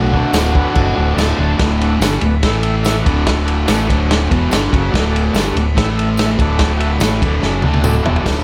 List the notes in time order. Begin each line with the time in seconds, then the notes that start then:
Already playing: B1 D2 A2 D3 F#4
0.12 D2 A2 D3 D4 F#4 A4, kick
0.29 D1 D4 F#4 A4
0.33 D2 A2 D3, snare, tambourine, crash
0.52 D2 A2 D3 D4, kick
0.57 F#4 B4
0.72 F#1 D2 A2 D3 D4 F#4 A4, kick, crash
0.93 D1 D2 A2 D3 D4 F#4 A4
1.15 D1 D2 A2 D3 D4 F#4 A4 A5, tambourine, crash
1.19 snare
1.37 D1 D2 A2 D3 D4 F#4
1.42 A4
1.57 D1 D2 A2 D3 D4 F#4 A4, kick, snare, ride
1.81 D4 F#4 A4, ride
2.00 G1 G2 D3 G3 D4 F#4, snare, ride, tambourine
2.05 A4
2.21 D1 D2 A2 D4 F#4 B4, ride
2.42 A1 A2 E3 A3 E4 A4 E5, kick, snare, ride
2.60 E4 A4 E5, ride
2.83 E4 A4 E5, snare, ride, tambourine
3.02 D1 D2 F#4 A4 D5
3.06 A2 D3, kick, ride
3.27 kick, snare, ride
3.43 F#4 A4 D5
3.48 ride
3.63 F#4 A4 D5
3.68 A1 A2 E3 A3, snare, ride, tambourine
3.85 D1 D2 F#4 A4 D5
3.90 A2 D3, kick, ride
4.05 F#4 A4 D5
4.11 snare, ride
4.28 E1 E2 B2 F#4 A4 C#5, kick, ride
4.33 E3
4.50 G1 G2 D3 F#4 A4 D5, snare, ride, tambourine
4.54 G3
4.69 F#1 F#2 F#4 A4 C#5
4.73 C#3 F#3, kick, ride
4.89 D2 A2 F#4 A4 D5
4.93 D1 D3, kick, snare, ride
5.08 F#4 A4 D5
5.16 ride
5.30 G1 F#4 A4 D5
5.34 G2 D3 G3, snare, ride, tambourine
5.51 F#4 A4 D5
5.55 D1 D2 A2, ride
5.75 A1 A2 E3 A3 E4 A4 E5, kick, snare, ride
5.95 E4 A4 E5, ride
6.17 E4 A4 E5, snare, ride, tambourine
6.37 D1 D2 A2 D3 F#4 A4, kick, ride
6.42 D5
6.59 kick, snare, ride
6.77 F#4 A4 E5, ride
6.99 A1 A2 E3 A3 F#4 A4 C#5, snare, ride, tambourine
7.21 D1 D2 A2 D3 F#4 A4 D5, kick, ride
7.42 F#1 F#2 C#3 F#3 F#4 A4 D5, snare
7.59 F#4 A4 D5, high tom
7.63 D2 D3 A3 D4
7.74 high tom
7.81 D1 D2 A2 D3 F#4 A4 D5, mid tom, tambourine
8.02 E1 E2 B2 E3 F#4 A4 D5, floor tom
8.16 F#4, floor tom
8.21 A4 D5
8.25 D1 D2 A2 D3, kick, snare, open hi-hat, tambourine